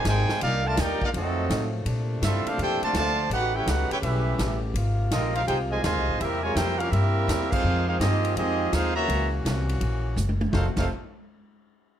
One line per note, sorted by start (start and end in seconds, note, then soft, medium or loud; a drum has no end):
0.00 1.12 D#3 medium
0.00 0.41 G#3 medium
0.00 1.12 A#3 medium
0.00 0.40 G#4 medium
0.04 0.27 G#1 medium
0.04 0.39 C3 medium
0.04 0.39 D#3 medium
0.04 0.38 G#3 medium
0.04 0.40 D#4 medium
0.04 0.40 C5 medium
0.04 0.41 G5 medium
0.04 snare medium
0.04 hi-hat pedal medium
0.04 ride medium
0.08 0.41 G#5 loud
0.29 snare medium
0.41 0.77 C2 loud
0.41 0.64 G3 medium
0.41 0.64 A#3 medium
0.41 1.13 D4 medium
0.41 0.65 D#4 medium
0.41 1.13 F4 medium
0.41 0.64 F4 medium
0.41 0.65 A#4 medium
0.41 0.65 D5 medium
0.41 0.65 F5 loud
0.41 ride medium
0.64 0.77 A3 medium
0.64 0.79 F4 medium
0.64 0.79 A#4 medium
0.64 0.78 D5 medium
0.64 0.79 A5 loud
0.77 1.00 D#2 loud
0.77 1.01 A#3 medium
0.77 1.01 D#4 medium
0.77 1.03 D#4 medium
0.77 1.01 G4 medium
0.77 1.02 A#4 medium
0.77 1.03 D5 medium
0.77 1.02 G5 loud
0.77 snare medium
0.77 hi-hat pedal medium
0.77 ride medium
1.01 1.08 G3 medium
1.01 1.08 A#3 medium
1.01 1.09 D#4 medium
1.01 1.08 F4 medium
1.01 1.10 A#4 medium
1.01 1.09 D5 medium
1.01 1.10 F5 loud
1.01 muted upright bass stroke soft
1.01 kick medium
1.14 1.49 F2 loud
1.14 1.86 D#3 medium
1.14 1.86 F3 medium
1.14 1.86 F#3 medium
1.14 4.72 A3 medium
1.14 1.70 A3 medium
1.14 1.71 C4 medium
1.14 1.70 D#4 medium
1.14 1.71 F#4 medium
1.14 1.71 A4 medium
1.14 1.71 D#5 medium
1.14 ride medium
1.49 1.85 A2 loud
1.49 snare medium
1.49 hi-hat pedal medium
1.49 ride medium
1.86 2.21 A#2 loud
1.86 3.14 A#2 medium
1.86 3.14 C3 medium
1.86 3.14 D4 loud
1.86 ride medium
2.22 2.44 G2 medium
2.22 2.46 C4 medium
2.22 2.46 E4 medium
2.22 2.46 F4 medium
2.22 2.46 A4 medium
2.22 2.46 E5 loud
2.22 snare medium
2.22 hi-hat pedal medium
2.22 ride medium
2.45 2.60 A3 medium
2.45 2.59 D4 medium
2.45 2.60 D4 medium
2.45 2.60 F4 medium
2.45 2.59 A4 medium
2.45 2.60 C5 medium
2.45 2.60 F5 medium
2.45 muted upright bass stroke soft
2.45 ride medium
2.58 2.80 F2 medium
2.58 2.82 G4 loud
2.58 2.82 C5 medium
2.58 ride medium
2.62 2.82 E4 medium
2.62 2.82 A4 medium
2.62 2.83 G5 loud
2.82 2.95 D3 medium
2.82 2.95 F3 loud
2.82 2.95 A3 medium
2.82 2.95 F4 medium
2.82 2.95 C5 medium
2.82 2.95 D5 medium
2.82 2.95 A5 loud
2.82 muted upright bass stroke soft
2.82 ride medium
2.93 3.29 D2 medium
2.93 3.29 D3 medium
2.93 3.29 F3 loud
2.93 3.29 A3 medium
2.93 3.30 F4 loud
2.93 3.30 D5 loud
2.93 snare medium
2.93 hi-hat pedal medium
2.93 ride medium
2.98 3.30 C5 loud
2.98 3.30 A5 loud
3.30 3.65 A1 medium
3.30 4.74 C#3 medium
3.30 4.74 B3 medium
3.30 3.54 D#4 medium
3.30 3.54 F#4 medium
3.30 4.74 G4 medium
3.30 3.54 B4 medium
3.30 ride medium
3.34 3.54 G4 loud
3.34 3.54 F#5 loud
3.56 3.68 C#4 medium
3.56 3.68 E4 medium
3.56 3.68 G4 medium
3.56 3.68 B4 medium
3.56 3.68 C#5 medium
3.56 3.68 G5 loud
3.66 3.89 C#2 medium
3.66 3.91 D#4 medium
3.66 3.91 F#4 medium
3.66 3.92 G4 medium
3.66 3.92 B4 medium
3.66 3.92 F#5 loud
3.66 snare medium
3.66 hi-hat pedal medium
3.66 ride medium
3.90 3.96 C#4 medium
3.90 3.96 E4 medium
3.90 3.98 E4 medium
3.90 3.96 G4 medium
3.90 3.98 B4 medium
3.90 3.98 C#5 medium
3.90 3.98 G5 medium
3.90 muted upright bass stroke soft
3.90 ride medium
4.01 4.38 B1 medium
4.01 4.58 G3 medium
4.01 4.58 C#4 medium
4.01 4.59 C#4 medium
4.01 4.58 E4 medium
4.01 4.59 G4 medium
4.01 4.59 B4 medium
4.01 4.59 E5 medium
4.01 ride medium
4.38 4.73 A1 loud
4.38 snare medium
4.38 hi-hat pedal medium
4.38 ride medium
4.74 5.10 G#1 medium
4.74 7.62 C3 medium
4.74 6.19 G#3 medium
4.74 10.35 A#3 medium
4.74 6.19 F4 medium
4.74 ride medium
5.11 5.46 A#1 medium
5.11 5.33 F3 medium
5.11 5.33 C4 medium
5.11 5.34 C4 medium
5.11 5.33 D#4 medium
5.11 5.34 F4 medium
5.11 5.34 A#4 medium
5.11 5.34 D#5 medium
5.11 snare medium
5.11 hi-hat pedal medium
5.11 ride medium
5.34 5.40 F3 medium
5.34 5.40 C4 medium
5.34 5.42 D#4 medium
5.34 5.40 F4 medium
5.34 5.42 A#4 medium
5.34 5.42 C5 medium
5.34 5.42 F5 medium
5.34 ride medium
5.47 5.83 C2 medium
5.47 5.59 D#4 medium
5.47 5.58 G4 medium
5.47 5.59 G#4 medium
5.47 5.59 C5 medium
5.47 5.59 G5 loud
5.47 ride medium
5.70 5.80 D#3 medium
5.70 5.80 F3 medium
5.70 5.80 G#3 medium
5.70 5.83 F4 medium
5.70 5.83 C5 medium
5.70 5.83 D#5 medium
5.70 5.83 G#5 medium
5.81 5.96 D#2 medium
5.81 6.16 D#3 medium
5.81 6.16 F3 medium
5.81 6.16 G#3 medium
5.81 6.18 F4 medium
5.81 6.17 C5 medium
5.81 6.17 D#5 medium
5.81 6.18 G#5 medium
5.81 snare medium
5.81 hi-hat pedal medium
5.81 ride medium
5.96 6.08 C2 medium
6.08 6.19 G#1 medium
6.19 6.55 E2 medium
6.19 6.43 G3 medium
6.19 7.64 G3 medium
6.19 6.43 A#3 medium
6.19 6.45 C4 medium
6.19 6.43 E4 medium
6.19 7.64 E4 medium
6.19 6.44 G4 medium
6.19 6.43 A#4 medium
6.19 6.44 E5 loud
6.19 ride medium
6.43 6.55 G#3 medium
6.43 6.55 F4 medium
6.43 6.54 A#4 medium
6.43 6.55 C#5 medium
6.43 6.55 G#5 medium
6.54 6.91 F2 medium
6.54 6.79 A#3 medium
6.54 6.79 E4 medium
6.54 6.79 G4 medium
6.54 6.77 A#4 medium
6.54 6.80 C5 medium
6.54 6.79 G5 loud
6.54 snare medium
6.54 hi-hat pedal medium
6.54 ride medium
6.78 6.92 C#4 medium
6.78 6.91 F4 medium
6.78 6.90 G4 medium
6.78 6.90 A#4 medium
6.78 6.92 F5 medium
6.78 ride medium
6.90 7.27 G2 medium
6.90 7.51 G3 medium
6.90 7.51 A#3 medium
6.90 7.51 C4 medium
6.90 7.51 E4 medium
6.90 7.51 G4 medium
6.90 7.52 A#4 medium
6.90 7.51 E5 medium
6.90 ride medium
7.28 7.63 E2 loud
7.28 snare medium
7.28 hi-hat pedal medium
7.28 ride medium
7.51 7.86 G#3 medium
7.51 7.86 C4 medium
7.51 7.87 D#4 medium
7.51 7.86 F4 medium
7.51 7.87 G#4 medium
7.51 7.87 C5 loud
7.51 7.87 F5 loud
7.51 kick loud
7.51 crash loud
7.64 7.99 F2 loud
7.64 9.07 D#3 medium
7.64 9.07 F3 medium
7.64 9.07 F4 medium
7.87 7.99 G#3 medium
7.87 7.99 C4 medium
7.87 7.99 D#4 medium
7.87 7.99 F4 medium
7.87 7.99 G#4 medium
7.87 8.00 C5 medium
7.87 8.00 F5 medium
8.00 8.35 G2 loud
8.00 8.34 A#3 medium
8.00 8.34 C4 medium
8.00 8.34 D#4 medium
8.00 8.34 G4 medium
8.00 8.34 G#4 medium
8.00 8.34 D#5 loud
8.00 snare medium
8.00 hi-hat pedal medium
8.00 ride medium
8.25 ride medium
8.36 8.71 F2 medium
8.36 8.70 G#3 medium
8.36 8.70 C4 medium
8.36 8.71 C4 medium
8.36 8.70 D#4 medium
8.36 8.71 G4 medium
8.36 8.71 G#4 medium
8.36 8.71 D#5 medium
8.36 ride medium
8.71 9.08 D#2 loud
8.71 8.96 G#3 medium
8.71 8.96 C4 medium
8.71 8.97 D#4 medium
8.71 8.96 F4 medium
8.71 8.97 G#4 loud
8.71 8.97 C5 medium
8.71 8.97 F5 loud
8.71 snare medium
8.71 hi-hat pedal medium
8.71 ride medium
8.95 9.29 C#3 medium
8.95 9.30 E3 medium
8.95 9.29 A#3 medium
8.95 9.30 F#4 loud
8.95 9.30 C#5 loud
8.95 9.30 E5 medium
8.95 9.30 A#5 loud
9.08 9.44 C#2 loud
9.08 10.35 E3 medium
9.08 10.35 C#4 medium
9.08 10.35 F#4 medium
9.08 ride medium
9.45 9.80 C2 loud
9.45 snare medium
9.45 hi-hat pedal medium
9.45 ride medium
9.69 ride medium
9.81 10.16 A#1 medium
9.81 ride medium
10.16 10.52 F#1 loud
10.16 hi-hat pedal medium
10.16 high tom medium
10.29 high tom medium
10.41 high tom loud
10.51 10.66 F1 loud
10.51 10.66 F2 medium
10.51 10.66 C3 medium
10.51 10.65 D#3 medium
10.51 10.75 F3 medium
10.51 10.74 A3 medium
10.51 10.66 A3 medium
10.51 10.75 D#4 medium
10.51 10.67 D#4 medium
10.51 10.75 F#4 medium
10.51 10.67 A4 medium
10.51 10.67 C5 medium
10.51 10.67 F5 medium
10.51 kick loud
10.51 snare medium
10.76 10.88 F1 loud
10.76 10.88 F2 medium
10.76 10.88 C3 medium
10.76 10.88 D#3 medium
10.76 10.88 A3 medium
10.76 10.89 D#4 medium
10.76 10.89 A4 medium
10.76 10.89 C5 medium
10.76 10.89 F5 medium
10.76 kick medium
10.76 snare medium
10.76 crash medium